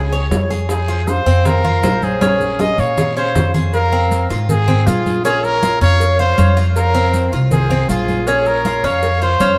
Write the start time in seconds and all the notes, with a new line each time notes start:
Already playing: C#2 G#4 C#5
0.12 C#5, high bongo, high conga, maracas
0.31 F2, high bongo, low bongo, high conga, short guiro, maracas
0.50 G#4, high bongo, high conga, short guiro, maracas
0.69 G#4 C5, high bongo, high conga, long guiro, maracas
0.88 F4, high conga, maracas
1.07 C5 F5, high bongo, high conga, short guiro, maracas
1.26 F2 C4, short guiro, maracas
1.45 A#4 F5, high bongo, high conga, low conga, long guiro, maracas
1.64 F4, high conga, low conga, maracas
1.83 A#1 C5, high bongo, low bongo, high conga, short guiro, maracas
2.02 G#4 C#5, high conga, short guiro, maracas
2.21 C#4, high bongo, high conga, long guiro, maracas
2.40 high bongo, high conga, maracas
2.59 F4 D#5 G#5, high bongo, high conga, short guiro, maracas
2.78 A#2 C#5 F5, high conga, short guiro, maracas
2.97 G#4, high bongo, low conga, long guiro, maracas
3.16 C#4 C5 F5, high bongo, maracas
3.35 F2, high bongo, low bongo, low conga, short guiro, maracas
3.54 G#4, high bongo, low conga, short guiro, maracas
3.73 A#4 F5, cowbell, high conga, long guiro, maracas
3.92 C4, high conga, maracas
4.11 cowbell, high conga, short guiro, maracas
4.30 G#2 F4, cowbell, short guiro, maracas
4.49 G#4 C5, cowbell, high conga, low conga, long guiro, maracas
4.68 C4, high conga, low conga, maracas
4.87 A#1 F4 G#4, cowbell, high conga, short guiro, maracas
5.06 high conga, short guiro, maracas
5.25 C#4 G#4 C#5, cowbell, high conga, long guiro, maracas
5.44 A#4 C#5, high conga, maracas
5.63 F4, cowbell, high conga, short guiro, maracas
5.81 F2 C#4 C#5 F5, cowbell, high conga, short guiro, maracas
6.00 cowbell, high conga, long guiro, maracas
6.19 F4 C5 F5, high conga, maracas
6.38 F2 C#4, cowbell, high conga, short guiro, maracas
6.57 F4, cowbell, short guiro, maracas
6.76 A#4 F5, cowbell, high conga, long guiro, maracas
6.94 C4, high conga, maracas
7.13 cowbell, high conga, short guiro, maracas
7.32 C2 F4, cowbell, short guiro, maracas
7.51 G#4 C5, cowbell, high conga, low conga, long guiro, maracas
7.70 C4, high conga, low conga, maracas
7.89 A#1 F4 G#4, cowbell, high conga, short guiro, maracas
8.08 high conga, short guiro, maracas
8.27 C#4 G#4 C#5, cowbell, high conga, long guiro, maracas
8.46 A#4 C#5, high conga, maracas
8.65 F4, cowbell, high conga, short guiro, maracas
8.83 F2 C#4 C#5 F5, cowbell, high conga, short guiro, maracas
9.03 cowbell, high conga, long guiro, maracas
9.22 F4 C5 F5, high conga, maracas
9.40 F2 C#4, cowbell, high conga, short guiro, maracas